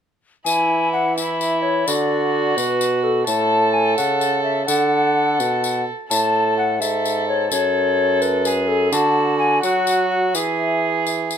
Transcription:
0.45 bassoon E3, violin E4, recorder G#5, tambourine
0.92 recorder F#5
1.17 violin E4, recorder E5, tambourine
1.41 tambourine
1.62 recorder C#5
1.86 bassoon D3, violin F#4, recorder D5, tambourine
2.57 bassoon B2, recorder B4, tambourine
2.81 tambourine
3.04 recorder A4
3.27 bassoon A2, violin A4, recorder A5, tambourine
3.74 recorder G#5
3.97 bassoon C#3, recorder F#5, tambourine
4.21 tambourine
4.44 recorder E5
4.66 bassoon D3, violin A4, recorder F#5, tambourine
5.40 bassoon B2, tambourine
5.64 tambourine
6.10 bassoon A2, violin A4, recorder A5, tambourine
6.58 recorder F#5
6.80 bassoon G#2, violin A4, recorder E5, tambourine
7.05 tambourine
7.28 recorder C#5
7.51 bassoon F#2, violin A4, recorder C#5, tambourine
8.22 recorder B4, tambourine
8.45 violin G#4, tambourine
8.68 recorder A4
8.92 bassoon D3, violin F#4, recorder A5, tambourine
9.38 recorder G#5
9.62 bassoon F#3, violin F#4, recorder F#5, tambourine
9.87 tambourine
10.10 recorder F#5
10.34 bassoon E3, violin G#4, recorder E5, tambourine
11.07 tambourine
11.31 tambourine

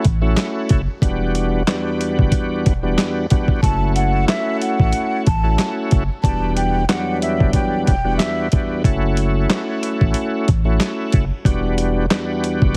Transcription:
0.05 sub bass A1, kick, closed hi-hat
0.21 tonewheel organ A3 C#4 E4 F#4
0.37 snare, clap, closed hi-hat
0.69 sub bass F#1, kick, closed hi-hat
1.02 sub bass E1, tonewheel organ E2 G3 B3 D4 F#4, kick, closed hi-hat
1.35 closed hi-hat
1.67 tonewheel organ E2 G3 B3 D4 F#4, snare, clap, closed hi-hat
2.01 closed hi-hat
2.19 sub bass F#1, kick
2.32 kick, closed hi-hat
2.66 sub bass E1, kick, closed hi-hat
2.83 tonewheel organ E2 G3 B3 D4 F#4
2.98 snare, clap, closed hi-hat
3.30 tonewheel organ E2 G3 B3 D4 F#4, kick, closed hi-hat
3.48 kick
3.62 sub bass F#1, tonewheel organ A3 C#4 E4 F#4, flute A5, kick, closed hi-hat
3.96 flute F#5, closed hi-hat
4.28 flute E5, snare, clap, closed hi-hat
4.61 flute F#5, closed hi-hat
4.80 sub bass A1, kick
4.93 closed hi-hat
5.26 sub bass A1, flute A5, kick, closed hi-hat
5.43 tonewheel organ A3 C#4 E4 F#4
5.59 snare, clap, closed hi-hat
5.91 sub bass F#1, kick, closed hi-hat
6.23 sub bass E1, tonewheel organ E2 G3 B3 D4 F#4, flute A5, kick, closed hi-hat
6.56 flute G5, closed hi-hat
6.89 tonewheel organ E2 F#3 G3 B3 D4, flute F#5, snare, clap, closed hi-hat
7.22 flute E5, closed hi-hat
7.40 sub bass F#1, kick
7.53 flute G5, kick, closed hi-hat
7.85 sub bass E1, flute G5, kick, closed hi-hat
8.04 tonewheel organ E2 G3 B3 D4 F#4
8.17 flute E5, snare, clap, closed hi-hat
8.52 tonewheel organ E2 G3 B3 D4 F#4, kick, closed hi-hat
8.84 sub bass F#1, tonewheel organ A3 C#4 E4 F#4, kick, closed hi-hat
9.17 closed hi-hat
9.50 snare, clap, closed hi-hat
9.83 closed hi-hat
10.01 sub bass A1, kick
10.14 closed hi-hat
10.48 sub bass A1, kick, closed hi-hat
10.65 tonewheel organ A3 C#4 E4 F#4
10.80 snare, clap, closed hi-hat
11.12 sub bass F#1, kick, closed hi-hat
11.45 sub bass E1, tonewheel organ E2 G3 B3 D4 F#4, kick, closed hi-hat
11.78 closed hi-hat
12.10 tonewheel organ E2 G3 B3 D4 F#4, snare, clap, closed hi-hat
12.44 closed hi-hat
12.62 sub bass F#1, kick

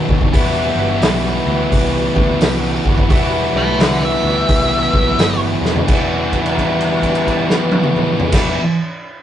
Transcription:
Already playing: distorted electric guitar B2 D#3 F#3 B3 D#4
0.08 picked electric bass D#2, tonewheel organ D#4 F#4 A4 D5, kick
0.21 kick
0.32 picked electric bass E1, distorted electric guitar E3 G3 B3 E4, tonewheel organ F#4 G4 B4 D5, kick, open hi-hat
0.76 picked electric bass G1, tonewheel organ F#4 G4 B4 E5
1.01 picked electric bass B1, tonewheel organ F#4 G4 B4 D5, snare, open hi-hat
1.46 picked electric bass D2, tonewheel organ F#4 G4 B4 E5
1.70 picked electric bass C2, tonewheel organ F#4 G4 B4 D5, kick, open hi-hat
2.14 picked electric bass D2, tonewheel organ F#4 G4 B4 D5, kick
2.41 picked electric bass C2, tonewheel organ F#4 G4 B4 E5, snare, open hi-hat
2.84 picked electric bass G1, tonewheel organ F#4 G4 B4 D5, kick
2.98 kick
3.08 picked electric bass E1, distorted electric guitar E3 G3 B3 E4, tonewheel organ F#4 G4 B4 D5, kick, open hi-hat
3.51 picked electric bass B1, tonewheel organ F#4 G4 B4 D5
3.57 lead electric guitar E5 A5
3.79 picked electric bass C2, tonewheel organ F#4 G4 B4 D5, lead electric guitar A4 D5, snare, open hi-hat
4.05 lead electric guitar E5
4.22 picked electric bass D2, tonewheel organ F#4 G4 B4 D5
4.47 picked electric bass C2, tonewheel organ F#4 G4 B4 D5, kick, open hi-hat
4.92 picked electric bass B1, tonewheel organ F#4 G4 B4 E5, kick
5.16 picked electric bass G1, tonewheel organ F#4 G4 B4 D5, open hi-hat
5.20 snare
5.60 picked electric bass E1, tonewheel organ F#4 G4 B4 D5
5.65 snare
5.76 floor tom
5.84 picked electric bass E1, distorted electric guitar E3 G3, tonewheel organ G4 B4
5.88 distorted electric guitar B3 E4, kick, crash
6.32 kick, crash
6.46 crash
6.58 kick, crash
6.81 crash
7.02 kick, crash
7.15 crash
7.27 kick, crash
7.50 snare
7.72 high tom
7.84 mid tom
7.96 mid tom
8.20 floor tom
8.29 picked electric bass E1, distorted electric guitar E3 G3, tonewheel organ F#4 G4 B4 D5, kick, crash
8.33 distorted electric guitar B3 E4, snare

